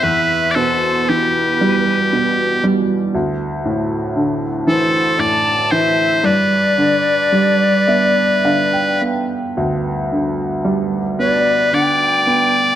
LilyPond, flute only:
\new Staff \with { instrumentName = "Flute" } { \time 3/4 \key g \mixolydian \tempo 4 = 56 e''8 c''8 b'4. r8 | r4. c''8 a''8 e''8 | d''2~ d''8 r8 | r4. d''8 g''4 | }